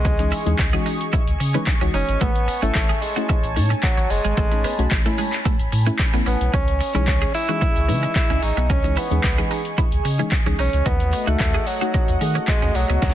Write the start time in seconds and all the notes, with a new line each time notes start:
Already playing: G#3 G#4 D#5 G#5 C#6
0.05 C#2 C#4, kick, closed hi-hat, shaker
0.19 E3 G#3 C#4 D#4 G#4, muted clean electric guitar stroke, closed hi-hat, shaker
0.32 E4, open hi-hat, shaker
0.46 D#2 E3 G#3 C#4 D#4 G#4, closed hi-hat, shaker
0.59 C#2, muted clean electric guitar stroke, kick, clap, closed hi-hat, shaker
0.73 E3 G#3 C#4 D#4 F#4 G#4, closed hi-hat, shaker
0.86 D#4, open hi-hat, shaker
1.01 closed hi-hat, shaker
1.13 E4, kick, closed hi-hat, shaker
1.27 C#2, closed hi-hat, shaker
1.40 C#3, muted clean electric guitar stroke, open hi-hat, shaker
1.54 E3 G#3 C#4 D#4 B4, closed hi-hat, shaker
1.67 muted clean electric guitar stroke, kick, clap, closed hi-hat, shaker
1.81 C#2 E3 G#3 C#4 D#4 F#4, closed hi-hat, shaker
1.94 F#1 C#4 D#4, open hi-hat, shaker
2.09 G#1, closed hi-hat, shaker
2.21 A1 A3 B3 C#5 A5, kick, closed hi-hat, shaker
2.35 closed hi-hat, shaker
2.48 muted clean electric guitar stroke, open hi-hat, shaker
2.62 G#1 A3 C#4 E4, closed hi-hat, shaker
2.75 A1, kick, clap, closed hi-hat, shaker
2.89 G#4, closed hi-hat, shaker
3.02 G#3, muted clean electric guitar stroke, open hi-hat, shaker
3.16 A3 C#4 E4 F#4, closed hi-hat, shaker
3.29 E4, kick, closed hi-hat, shaker
3.43 A1, closed hi-hat, shaker
3.56 A2 A3 C#4 D#4, muted clean electric guitar stroke, open hi-hat, shaker
3.70 C#4, closed hi-hat, shaker
3.83 F#3, kick, clap, closed hi-hat, shaker
3.97 A1 C#4, closed hi-hat, shaker
4.10 F#1 G#3, muted clean electric guitar stroke, open hi-hat, shaker
4.25 G#1 G#3, closed hi-hat, shaker
4.37 A1 A3 B5, kick, closed hi-hat, shaker
4.52 A3 C#4 D#4, muted clean electric guitar stroke, closed hi-hat, shaker
4.64 B3, open hi-hat, shaker
4.78 B1 A3 C#4 F#4, closed hi-hat, shaker
4.91 A1, muted clean electric guitar stroke, kick, clap, closed hi-hat, shaker
5.05 A3 C#4 E4, closed hi-hat, shaker
5.18 G#3, open hi-hat, shaker
5.33 clap, closed hi-hat, shaker
5.45 A3, kick, closed hi-hat, shaker
5.59 A1, closed hi-hat, shaker
5.72 A2, muted clean electric guitar stroke, open hi-hat, shaker
5.86 A3 C#4 E4, closed hi-hat, shaker
5.99 muted clean electric guitar stroke, kick, clap, closed hi-hat, shaker
6.13 A1 A3 B3 C#4 E4, closed hi-hat, shaker
6.26 A1 B3 C#4, open hi-hat, shaker
6.41 B1, closed hi-hat, shaker
6.53 C#2 C#4 G#4 D#5 C#6, kick, closed hi-hat, shaker
6.68 closed hi-hat, shaker
6.80 muted clean electric guitar stroke, open hi-hat, shaker
6.94 B1 E3 G#3 C#4 D#4 E4 G#4, closed hi-hat, shaker
7.08 C#2, kick, clap, closed hi-hat, shaker
7.22 G#4, closed hi-hat, shaker
7.34 E4, muted clean electric guitar stroke, open hi-hat, shaker
7.49 E3 G#3 C#4 D#4 F#4 G#4, closed hi-hat, shaker
7.61 E4, kick, closed hi-hat, shaker
7.76 C#2, closed hi-hat, shaker
7.88 C#3 E3 G#3 C#4 D#4 B4, muted clean electric guitar stroke, open hi-hat, shaker
8.03 C#4, closed hi-hat, shaker
8.16 E4, kick, clap, closed hi-hat, shaker
8.30 C#2 C#4, closed hi-hat, shaker
8.42 A1 D#4, muted clean electric guitar stroke, open hi-hat, shaker
8.57 B1 B3, closed hi-hat, shaker
8.70 C#2 C#4, kick, closed hi-hat, shaker
8.84 E3 G#3 C#4 D#4 G#4, muted clean electric guitar stroke, closed hi-hat, shaker
8.97 B3 E4, open hi-hat, shaker
9.11 D#2 E3 G#3 C#4 D#4 G#4, closed hi-hat, shaker
9.24 C#2, muted clean electric guitar stroke, kick, clap, closed hi-hat, shaker
9.38 E3 G#3 C#4 D#4 G#4, closed hi-hat, shaker
9.51 D#4, open hi-hat, shaker
9.65 closed hi-hat, shaker
9.78 E4, kick, closed hi-hat, shaker
9.92 C#2, closed hi-hat, shaker
10.05 C#3, muted clean electric guitar stroke, open hi-hat, shaker
10.19 E3 G#3 C#4 D#4 G#4, closed hi-hat, shaker
10.32 muted clean electric guitar stroke, kick, clap, closed hi-hat, shaker
10.46 C#2 E3 G#3 C#4 D#4 G#4, closed hi-hat, shaker
10.59 B1 C#4 D#4, open hi-hat, shaker
10.73 C#2, closed hi-hat, shaker
10.86 D#2 A3 B3 D#4 F#4 D#5 F#5, kick, closed hi-hat, shaker
11.00 closed hi-hat, shaker
11.13 muted clean electric guitar stroke, open hi-hat, shaker
11.27 C#2 A3 D#4 F#4, closed hi-hat, shaker
11.40 D#2, kick, clap, closed hi-hat, shaker
11.54 G#4, closed hi-hat, shaker
11.67 F#3, muted clean electric guitar stroke, open hi-hat, shaker
11.81 A3 D#4 F#4, closed hi-hat, shaker
11.94 D#4, kick, closed hi-hat, shaker
12.08 D#2, closed hi-hat, shaker
12.21 D#3 A3 D#4 G#4, muted clean electric guitar stroke, open hi-hat, shaker
12.35 C#4, closed hi-hat, shaker
12.48 G#3, kick, clap, closed hi-hat, shaker
12.62 D#2 C#4, closed hi-hat, shaker
12.75 B1 F#3, muted clean electric guitar stroke, open hi-hat, shaker
12.90 C#2 B3, closed hi-hat, shaker
13.02 D#2 D#4 B5, kick, snare, closed hi-hat, shaker
13.09 snare